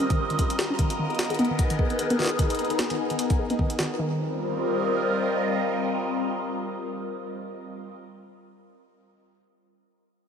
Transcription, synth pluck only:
0.10 0.18 D#3 medium
0.30 0.35 D#3 medium
0.59 0.66 G4 loud
0.70 0.73 C#4 loud
0.79 0.89 D#3 medium
0.99 1.06 D#3 medium
1.30 1.35 G#4 loud
1.39 1.43 B3 loud
1.50 1.58 D#3 medium
1.70 1.75 D#3 medium
1.99 2.06 G#4 medium
2.10 2.13 B3 loud
2.19 2.29 D#3 medium
2.39 2.46 D#3 medium
2.70 2.75 G#4 loud
2.79 2.83 B3 loud
2.90 2.98 D#3 medium
3.10 3.15 D#3 medium
3.39 3.46 G#4 loud
3.50 3.53 B3 loud
3.59 3.69 D#3 medium
3.79 3.86 D#3 medium
3.99 4.18 D#3 medium

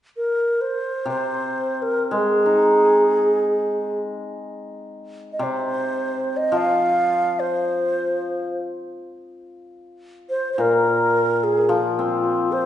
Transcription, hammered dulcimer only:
1.06 3.10 C3 soft
2.11 4.16 G#3 soft
2.46 3.82 D#4 soft
5.39 6.54 C3 soft
6.52 8.60 F3 medium
10.58 12.25 A#2 soft
11.69 12.65 F3 soft
11.99 12.65 C4 soft

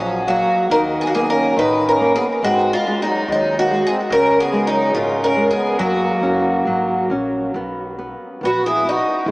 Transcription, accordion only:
0.00 0.23 F3 medium
0.25 0.66 A#3 medium
0.70 0.83 D#4 medium
0.99 1.05 B3 medium
1.07 1.13 A#3 medium
1.13 1.27 B3 medium
1.29 1.55 C#4 medium
1.58 1.84 D#4 medium
1.87 2.13 C#4 medium
2.15 2.28 B3 medium
2.47 2.72 C4 medium
2.76 3.00 G#3 medium
3.03 3.28 F#3 medium
3.30 3.55 F#3 medium
3.58 3.82 A#3 medium
3.88 4.00 C4 medium
4.14 4.38 C#4 medium
4.42 4.66 B3 medium
4.69 4.93 F#3 medium
4.97 5.22 G#3 medium
5.24 5.49 C#4 medium
5.53 5.78 B3 medium
5.80 7.07 A#3 medium
8.43 8.63 B4 medium
8.65 8.84 G#4 medium
8.90 9.27 F#4 medium

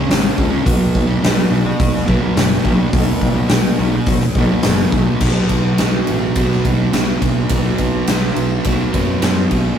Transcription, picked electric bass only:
0.09 0.29 G#1 medium
0.38 0.58 C#2 medium
0.66 0.86 B1 medium
0.95 1.15 B1 loud
1.23 1.43 B1 medium
1.51 1.71 B1 medium
1.80 2.00 B1 medium
2.08 2.28 B1 medium
2.36 2.56 F#1 medium
2.65 2.85 B1 medium
2.93 3.13 B1 medium
3.21 3.41 B1 loud
3.50 3.70 B1 loud
3.79 3.99 B1 medium
4.07 4.27 B1 medium
4.35 4.55 B1 medium
4.65 4.84 F#1 medium
4.93 5.13 B1 medium
5.21 5.43 B1 medium
5.50 5.72 B1 medium
5.81 6.02 B1 medium
6.09 6.30 A1 medium
6.36 6.58 B1 medium
6.65 6.87 B1 medium
6.94 7.15 B1 medium
7.22 7.44 B1 medium
7.50 7.72 B1 medium
7.79 8.01 B1 medium
8.08 8.30 B1 medium
8.36 8.58 B1 medium
8.66 8.87 B1 medium
8.94 9.16 F#2 medium
9.22 9.44 F#2 medium
9.51 9.73 B1 medium

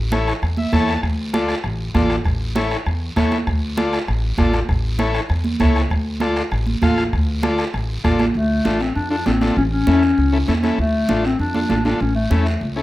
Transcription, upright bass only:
0.00 0.30 A1 medium
0.43 0.67 E2 medium
0.73 0.97 E2 medium
1.03 1.52 D2 medium
1.64 1.89 A1 medium
1.95 2.19 A1 medium
2.25 2.74 A1 medium
2.86 3.11 E2 medium
3.17 3.41 E2 medium
3.47 3.96 D2 medium
4.08 4.33 A1 medium
4.39 4.63 A1 medium
4.69 5.18 A1 medium
5.30 5.54 E2 medium
5.61 5.85 C#2 medium
5.91 6.40 D2 medium
6.52 6.76 A1 medium
6.83 7.07 A1 medium
7.13 7.62 D2 medium
7.74 7.98 A1 medium
8.05 8.29 A1 medium
8.35 8.59 D2 medium
8.65 8.90 A1 medium
8.96 9.20 F2 medium
9.26 9.51 A1 medium
9.57 9.81 A1 loud
9.87 10.12 E2 medium
10.18 10.42 C#2 medium
10.48 10.73 E2 medium
10.78 11.03 D2 medium
11.09 11.33 A1 medium
11.39 11.64 F2 medium
11.70 11.94 A1 medium
12.01 12.25 A1 medium
12.31 12.55 E2 medium
12.61 12.82 C#2 medium

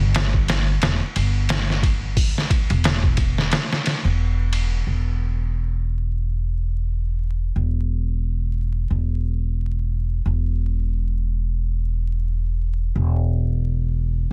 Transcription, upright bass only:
0.01 0.80 G1 medium
0.82 0.99 E1 medium
1.16 2.14 G1 medium
2.70 3.49 E1 medium
4.05 4.84 E1 medium
4.87 7.53 E1 medium
7.56 8.88 E1 medium
8.90 10.23 E1 medium
10.26 12.93 E1 medium
12.95 14.27 E1 medium

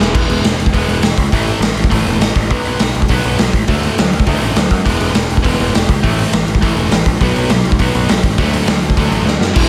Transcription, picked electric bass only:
0.00 0.14 E1 medium
0.14 0.25 E1 medium
0.29 0.40 E1 medium
0.44 0.54 E1 medium
0.58 0.68 E1 medium
0.74 0.84 E1 medium
0.88 0.98 E1 medium
1.02 1.12 E1 medium
1.18 1.28 C#2 medium
1.32 1.53 A1 medium
1.60 1.71 A1 medium
1.75 1.86 A1 medium
1.92 2.02 A1 medium
2.05 2.16 E1 medium
2.19 2.30 A1 medium
2.36 2.50 A1 medium
2.50 2.61 B1 medium
2.65 2.75 B1 medium
2.81 2.91 B1 medium
2.96 3.06 B1 medium
3.09 3.20 B1 medium
3.25 3.35 B1 medium
3.40 3.49 B1 medium
3.53 3.63 A1 medium
3.68 3.88 D2 medium
4.00 4.09 D2 medium
4.13 4.23 D2 medium
4.27 4.38 D2 medium
4.41 4.52 A1 medium
4.57 4.67 D2 medium
4.71 4.81 F#2 medium
4.86 4.96 E1 medium
5.00 5.10 E1 medium
5.15 5.26 E1 medium
5.30 5.40 E1 medium
5.45 5.55 E1 medium
5.60 5.70 E1 medium
5.75 5.85 E1 medium
5.89 5.99 C#2 medium
6.04 6.24 A1 medium
6.33 6.43 A1 medium
6.47 6.58 A1 medium
6.62 6.73 A1 medium
6.76 6.87 E1 medium
6.91 7.02 A1 medium
7.06 7.16 A#1 medium
7.21 7.31 B1 medium
7.36 7.46 B1 medium
7.50 7.60 B1 medium
7.65 7.75 B1 medium
7.80 7.90 B1 medium
7.95 8.05 B1 medium
8.10 8.20 B1 medium
8.24 8.34 A1 medium
8.39 8.59 D2 medium
8.68 8.78 D2 medium
8.82 8.93 D2 medium
8.97 9.07 D2 medium
9.11 9.22 A1 medium
9.26 9.36 D2 medium
9.40 9.50 F#2 medium
9.56 9.69 E1 medium

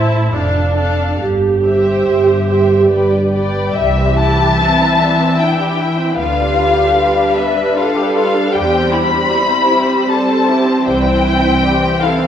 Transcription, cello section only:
0.00 0.23 A2 medium
0.33 1.11 F2 medium
1.21 1.97 G2 medium
2.07 2.80 G2 medium
2.90 3.66 G2 medium
3.77 4.57 G4 medium
4.61 5.40 C4 medium
5.40 5.78 D4 medium
5.79 6.17 E4 medium
6.18 6.96 F4 medium
6.96 7.35 G4 medium
7.37 7.77 B4 medium
7.77 8.55 A4 medium
8.54 9.31 G4 medium
9.31 9.70 E4 medium
9.70 10.09 G4 medium
10.09 10.47 A4 medium
10.49 10.87 G4 medium
10.87 11.63 E4 medium
11.64 12.01 G4 medium
12.02 12.27 A4 medium

